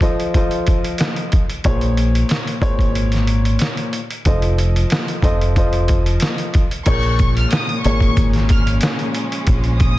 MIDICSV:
0, 0, Header, 1, 6, 480
1, 0, Start_track
1, 0, Key_signature, -5, "minor"
1, 0, Tempo, 652174
1, 1212, Time_signature, 4, 2, 24, 8
1, 7351, End_track
2, 0, Start_track
2, 0, Title_t, "Violin section"
2, 0, Program_c, 0, 48
2, 5052, Note_on_c, 0, 85, 106
2, 5400, Note_off_c, 0, 85, 0
2, 5423, Note_on_c, 0, 89, 86
2, 5521, Note_off_c, 0, 89, 0
2, 5544, Note_on_c, 0, 87, 88
2, 5754, Note_off_c, 0, 87, 0
2, 5768, Note_on_c, 0, 85, 87
2, 5986, Note_off_c, 0, 85, 0
2, 6256, Note_on_c, 0, 89, 72
2, 6372, Note_off_c, 0, 89, 0
2, 7204, Note_on_c, 0, 87, 75
2, 7351, Note_off_c, 0, 87, 0
2, 7351, End_track
3, 0, Start_track
3, 0, Title_t, "Grand piano"
3, 0, Program_c, 1, 0
3, 10, Note_on_c, 1, 53, 98
3, 13, Note_on_c, 1, 65, 84
3, 15, Note_on_c, 1, 69, 87
3, 17, Note_on_c, 1, 72, 83
3, 20, Note_on_c, 1, 75, 107
3, 234, Note_off_c, 1, 53, 0
3, 235, Note_off_c, 1, 65, 0
3, 236, Note_off_c, 1, 69, 0
3, 237, Note_off_c, 1, 72, 0
3, 239, Note_off_c, 1, 75, 0
3, 257, Note_on_c, 1, 53, 91
3, 259, Note_on_c, 1, 65, 88
3, 262, Note_on_c, 1, 69, 84
3, 264, Note_on_c, 1, 72, 89
3, 267, Note_on_c, 1, 75, 104
3, 1032, Note_off_c, 1, 53, 0
3, 1033, Note_off_c, 1, 65, 0
3, 1035, Note_off_c, 1, 69, 0
3, 1036, Note_off_c, 1, 72, 0
3, 1037, Note_off_c, 1, 75, 0
3, 1209, Note_on_c, 1, 46, 85
3, 1212, Note_on_c, 1, 58, 82
3, 1214, Note_on_c, 1, 68, 88
3, 1216, Note_on_c, 1, 72, 81
3, 1219, Note_on_c, 1, 73, 104
3, 1878, Note_off_c, 1, 46, 0
3, 1879, Note_off_c, 1, 58, 0
3, 1881, Note_off_c, 1, 68, 0
3, 1882, Note_off_c, 1, 72, 0
3, 1883, Note_off_c, 1, 73, 0
3, 1921, Note_on_c, 1, 46, 95
3, 1924, Note_on_c, 1, 58, 90
3, 1926, Note_on_c, 1, 68, 85
3, 1928, Note_on_c, 1, 72, 88
3, 1931, Note_on_c, 1, 73, 119
3, 2923, Note_off_c, 1, 46, 0
3, 2924, Note_off_c, 1, 58, 0
3, 2926, Note_off_c, 1, 68, 0
3, 2927, Note_off_c, 1, 72, 0
3, 2928, Note_off_c, 1, 73, 0
3, 3136, Note_on_c, 1, 53, 89
3, 3138, Note_on_c, 1, 65, 76
3, 3140, Note_on_c, 1, 69, 82
3, 3143, Note_on_c, 1, 72, 77
3, 3145, Note_on_c, 1, 75, 103
3, 3801, Note_off_c, 1, 53, 0
3, 3802, Note_off_c, 1, 65, 0
3, 3804, Note_off_c, 1, 69, 0
3, 3805, Note_off_c, 1, 72, 0
3, 3806, Note_off_c, 1, 75, 0
3, 3851, Note_on_c, 1, 53, 97
3, 3854, Note_on_c, 1, 65, 83
3, 3857, Note_on_c, 1, 69, 89
3, 3859, Note_on_c, 1, 72, 85
3, 3861, Note_on_c, 1, 75, 109
3, 4074, Note_off_c, 1, 53, 0
3, 4075, Note_off_c, 1, 65, 0
3, 4077, Note_off_c, 1, 69, 0
3, 4078, Note_off_c, 1, 72, 0
3, 4079, Note_off_c, 1, 75, 0
3, 4097, Note_on_c, 1, 53, 96
3, 4099, Note_on_c, 1, 65, 89
3, 4101, Note_on_c, 1, 69, 84
3, 4105, Note_on_c, 1, 72, 90
3, 4107, Note_on_c, 1, 75, 103
3, 4872, Note_off_c, 1, 53, 0
3, 4873, Note_off_c, 1, 65, 0
3, 4874, Note_off_c, 1, 69, 0
3, 4876, Note_off_c, 1, 72, 0
3, 4877, Note_off_c, 1, 75, 0
3, 5048, Note_on_c, 1, 46, 94
3, 5051, Note_on_c, 1, 58, 87
3, 5053, Note_on_c, 1, 68, 87
3, 5056, Note_on_c, 1, 70, 78
3, 5059, Note_on_c, 1, 73, 95
3, 5718, Note_off_c, 1, 46, 0
3, 5719, Note_off_c, 1, 58, 0
3, 5720, Note_off_c, 1, 68, 0
3, 5721, Note_off_c, 1, 70, 0
3, 5723, Note_off_c, 1, 73, 0
3, 5775, Note_on_c, 1, 46, 94
3, 5778, Note_on_c, 1, 58, 84
3, 5780, Note_on_c, 1, 68, 89
3, 5783, Note_on_c, 1, 70, 86
3, 5785, Note_on_c, 1, 73, 103
3, 6770, Note_off_c, 1, 46, 0
3, 6772, Note_off_c, 1, 58, 0
3, 6773, Note_off_c, 1, 68, 0
3, 6774, Note_off_c, 1, 70, 0
3, 6775, Note_off_c, 1, 73, 0
3, 7351, End_track
4, 0, Start_track
4, 0, Title_t, "String section"
4, 0, Program_c, 2, 48
4, 5058, Note_on_c, 2, 53, 72
4, 5058, Note_on_c, 2, 61, 87
4, 5059, Note_on_c, 2, 49, 79
4, 5059, Note_on_c, 2, 56, 73
4, 5059, Note_on_c, 2, 58, 70
4, 7351, Note_off_c, 2, 49, 0
4, 7351, Note_off_c, 2, 53, 0
4, 7351, Note_off_c, 2, 56, 0
4, 7351, Note_off_c, 2, 58, 0
4, 7351, Note_off_c, 2, 61, 0
4, 7351, End_track
5, 0, Start_track
5, 0, Title_t, "Fingered electric bass"
5, 0, Program_c, 3, 33
5, 1214, Note_on_c, 3, 34, 108
5, 1638, Note_off_c, 3, 34, 0
5, 1928, Note_on_c, 3, 32, 89
5, 2621, Note_off_c, 3, 32, 0
5, 3135, Note_on_c, 3, 29, 112
5, 3559, Note_off_c, 3, 29, 0
5, 3848, Note_on_c, 3, 29, 90
5, 4540, Note_off_c, 3, 29, 0
5, 5055, Note_on_c, 3, 34, 110
5, 5479, Note_off_c, 3, 34, 0
5, 5776, Note_on_c, 3, 32, 94
5, 6465, Note_off_c, 3, 32, 0
5, 6974, Note_on_c, 3, 34, 107
5, 7351, Note_off_c, 3, 34, 0
5, 7351, End_track
6, 0, Start_track
6, 0, Title_t, "Drums"
6, 5, Note_on_c, 9, 36, 86
6, 14, Note_on_c, 9, 42, 69
6, 79, Note_off_c, 9, 36, 0
6, 88, Note_off_c, 9, 42, 0
6, 145, Note_on_c, 9, 42, 45
6, 218, Note_off_c, 9, 42, 0
6, 253, Note_on_c, 9, 36, 98
6, 253, Note_on_c, 9, 42, 82
6, 326, Note_off_c, 9, 36, 0
6, 327, Note_off_c, 9, 42, 0
6, 375, Note_on_c, 9, 42, 52
6, 448, Note_off_c, 9, 42, 0
6, 490, Note_on_c, 9, 42, 73
6, 497, Note_on_c, 9, 36, 88
6, 563, Note_off_c, 9, 42, 0
6, 571, Note_off_c, 9, 36, 0
6, 621, Note_on_c, 9, 42, 58
6, 695, Note_off_c, 9, 42, 0
6, 722, Note_on_c, 9, 42, 109
6, 740, Note_on_c, 9, 38, 100
6, 796, Note_off_c, 9, 42, 0
6, 814, Note_off_c, 9, 38, 0
6, 856, Note_on_c, 9, 42, 50
6, 930, Note_off_c, 9, 42, 0
6, 971, Note_on_c, 9, 42, 72
6, 979, Note_on_c, 9, 36, 97
6, 1044, Note_off_c, 9, 42, 0
6, 1052, Note_off_c, 9, 36, 0
6, 1101, Note_on_c, 9, 42, 54
6, 1174, Note_off_c, 9, 42, 0
6, 1208, Note_on_c, 9, 42, 89
6, 1212, Note_on_c, 9, 36, 113
6, 1282, Note_off_c, 9, 42, 0
6, 1286, Note_off_c, 9, 36, 0
6, 1334, Note_on_c, 9, 42, 55
6, 1408, Note_off_c, 9, 42, 0
6, 1453, Note_on_c, 9, 42, 69
6, 1527, Note_off_c, 9, 42, 0
6, 1584, Note_on_c, 9, 42, 58
6, 1658, Note_off_c, 9, 42, 0
6, 1686, Note_on_c, 9, 42, 77
6, 1701, Note_on_c, 9, 38, 107
6, 1760, Note_off_c, 9, 42, 0
6, 1775, Note_off_c, 9, 38, 0
6, 1821, Note_on_c, 9, 42, 54
6, 1895, Note_off_c, 9, 42, 0
6, 1925, Note_on_c, 9, 36, 88
6, 1935, Note_on_c, 9, 42, 72
6, 1999, Note_off_c, 9, 36, 0
6, 2008, Note_off_c, 9, 42, 0
6, 2052, Note_on_c, 9, 36, 84
6, 2064, Note_on_c, 9, 42, 47
6, 2126, Note_off_c, 9, 36, 0
6, 2138, Note_off_c, 9, 42, 0
6, 2174, Note_on_c, 9, 42, 82
6, 2247, Note_off_c, 9, 42, 0
6, 2295, Note_on_c, 9, 42, 53
6, 2313, Note_on_c, 9, 38, 35
6, 2369, Note_off_c, 9, 42, 0
6, 2386, Note_off_c, 9, 38, 0
6, 2410, Note_on_c, 9, 42, 75
6, 2483, Note_off_c, 9, 42, 0
6, 2541, Note_on_c, 9, 42, 59
6, 2615, Note_off_c, 9, 42, 0
6, 2643, Note_on_c, 9, 42, 104
6, 2661, Note_on_c, 9, 38, 104
6, 2717, Note_off_c, 9, 42, 0
6, 2734, Note_off_c, 9, 38, 0
6, 2777, Note_on_c, 9, 42, 50
6, 2851, Note_off_c, 9, 42, 0
6, 2892, Note_on_c, 9, 42, 71
6, 2965, Note_off_c, 9, 42, 0
6, 3021, Note_on_c, 9, 42, 53
6, 3095, Note_off_c, 9, 42, 0
6, 3129, Note_on_c, 9, 42, 89
6, 3133, Note_on_c, 9, 36, 113
6, 3203, Note_off_c, 9, 42, 0
6, 3207, Note_off_c, 9, 36, 0
6, 3255, Note_on_c, 9, 42, 57
6, 3328, Note_off_c, 9, 42, 0
6, 3374, Note_on_c, 9, 42, 68
6, 3447, Note_off_c, 9, 42, 0
6, 3504, Note_on_c, 9, 42, 57
6, 3578, Note_off_c, 9, 42, 0
6, 3607, Note_on_c, 9, 42, 80
6, 3622, Note_on_c, 9, 38, 112
6, 3681, Note_off_c, 9, 42, 0
6, 3696, Note_off_c, 9, 38, 0
6, 3741, Note_on_c, 9, 42, 56
6, 3815, Note_off_c, 9, 42, 0
6, 3846, Note_on_c, 9, 36, 90
6, 3855, Note_on_c, 9, 42, 72
6, 3919, Note_off_c, 9, 36, 0
6, 3929, Note_off_c, 9, 42, 0
6, 3985, Note_on_c, 9, 42, 46
6, 4059, Note_off_c, 9, 42, 0
6, 4093, Note_on_c, 9, 36, 101
6, 4094, Note_on_c, 9, 42, 78
6, 4167, Note_off_c, 9, 36, 0
6, 4168, Note_off_c, 9, 42, 0
6, 4215, Note_on_c, 9, 42, 52
6, 4289, Note_off_c, 9, 42, 0
6, 4329, Note_on_c, 9, 42, 78
6, 4337, Note_on_c, 9, 36, 86
6, 4403, Note_off_c, 9, 42, 0
6, 4411, Note_off_c, 9, 36, 0
6, 4461, Note_on_c, 9, 42, 59
6, 4535, Note_off_c, 9, 42, 0
6, 4562, Note_on_c, 9, 42, 109
6, 4580, Note_on_c, 9, 38, 106
6, 4636, Note_off_c, 9, 42, 0
6, 4654, Note_off_c, 9, 38, 0
6, 4697, Note_on_c, 9, 42, 53
6, 4770, Note_off_c, 9, 42, 0
6, 4811, Note_on_c, 9, 42, 69
6, 4819, Note_on_c, 9, 36, 96
6, 4885, Note_off_c, 9, 42, 0
6, 4893, Note_off_c, 9, 36, 0
6, 4941, Note_on_c, 9, 42, 55
6, 5014, Note_off_c, 9, 42, 0
6, 5047, Note_on_c, 9, 42, 91
6, 5052, Note_on_c, 9, 36, 118
6, 5052, Note_on_c, 9, 49, 101
6, 5057, Note_on_c, 9, 82, 56
6, 5121, Note_off_c, 9, 42, 0
6, 5125, Note_off_c, 9, 49, 0
6, 5126, Note_off_c, 9, 36, 0
6, 5131, Note_off_c, 9, 82, 0
6, 5173, Note_on_c, 9, 42, 36
6, 5247, Note_off_c, 9, 42, 0
6, 5290, Note_on_c, 9, 82, 49
6, 5292, Note_on_c, 9, 42, 71
6, 5297, Note_on_c, 9, 36, 98
6, 5364, Note_off_c, 9, 82, 0
6, 5365, Note_off_c, 9, 42, 0
6, 5370, Note_off_c, 9, 36, 0
6, 5422, Note_on_c, 9, 42, 59
6, 5496, Note_off_c, 9, 42, 0
6, 5525, Note_on_c, 9, 42, 82
6, 5535, Note_on_c, 9, 82, 65
6, 5540, Note_on_c, 9, 38, 113
6, 5598, Note_off_c, 9, 42, 0
6, 5609, Note_off_c, 9, 82, 0
6, 5613, Note_off_c, 9, 38, 0
6, 5660, Note_on_c, 9, 42, 36
6, 5733, Note_off_c, 9, 42, 0
6, 5774, Note_on_c, 9, 42, 72
6, 5774, Note_on_c, 9, 82, 51
6, 5847, Note_off_c, 9, 42, 0
6, 5847, Note_off_c, 9, 82, 0
6, 5892, Note_on_c, 9, 36, 87
6, 5903, Note_on_c, 9, 42, 47
6, 5965, Note_off_c, 9, 36, 0
6, 5977, Note_off_c, 9, 42, 0
6, 6012, Note_on_c, 9, 82, 72
6, 6013, Note_on_c, 9, 36, 101
6, 6013, Note_on_c, 9, 42, 82
6, 6086, Note_off_c, 9, 36, 0
6, 6086, Note_off_c, 9, 42, 0
6, 6086, Note_off_c, 9, 82, 0
6, 6134, Note_on_c, 9, 42, 38
6, 6152, Note_on_c, 9, 38, 38
6, 6207, Note_off_c, 9, 42, 0
6, 6225, Note_off_c, 9, 38, 0
6, 6249, Note_on_c, 9, 42, 78
6, 6250, Note_on_c, 9, 82, 50
6, 6257, Note_on_c, 9, 36, 92
6, 6322, Note_off_c, 9, 42, 0
6, 6324, Note_off_c, 9, 82, 0
6, 6330, Note_off_c, 9, 36, 0
6, 6381, Note_on_c, 9, 42, 60
6, 6384, Note_on_c, 9, 82, 49
6, 6454, Note_off_c, 9, 42, 0
6, 6458, Note_off_c, 9, 82, 0
6, 6482, Note_on_c, 9, 42, 111
6, 6490, Note_on_c, 9, 82, 71
6, 6500, Note_on_c, 9, 38, 111
6, 6555, Note_off_c, 9, 42, 0
6, 6564, Note_off_c, 9, 82, 0
6, 6573, Note_off_c, 9, 38, 0
6, 6617, Note_on_c, 9, 42, 36
6, 6690, Note_off_c, 9, 42, 0
6, 6731, Note_on_c, 9, 42, 73
6, 6732, Note_on_c, 9, 82, 56
6, 6805, Note_off_c, 9, 42, 0
6, 6806, Note_off_c, 9, 82, 0
6, 6860, Note_on_c, 9, 42, 55
6, 6934, Note_off_c, 9, 42, 0
6, 6967, Note_on_c, 9, 42, 92
6, 6972, Note_on_c, 9, 36, 116
6, 6978, Note_on_c, 9, 82, 58
6, 7041, Note_off_c, 9, 42, 0
6, 7046, Note_off_c, 9, 36, 0
6, 7051, Note_off_c, 9, 82, 0
6, 7092, Note_on_c, 9, 42, 36
6, 7166, Note_off_c, 9, 42, 0
6, 7210, Note_on_c, 9, 82, 48
6, 7212, Note_on_c, 9, 42, 69
6, 7216, Note_on_c, 9, 36, 99
6, 7284, Note_off_c, 9, 82, 0
6, 7285, Note_off_c, 9, 42, 0
6, 7290, Note_off_c, 9, 36, 0
6, 7351, End_track
0, 0, End_of_file